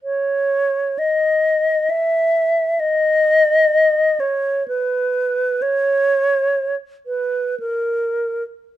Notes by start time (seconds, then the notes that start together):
0.03 C#5
0.99 D#5
1.90 E5
2.80 D#5
4.20 C#5
4.68 B4
5.62 C#5
7.06 B4
7.60 A#4